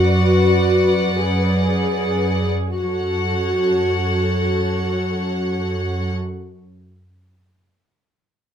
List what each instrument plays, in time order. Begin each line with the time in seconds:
Already playing: cello section F#2, viola section F#4, violin section B4 D5 F#5
1.20 viola section G#4
2.78 cello section F#2, viola section F#4, violin section A4 C#5 F#5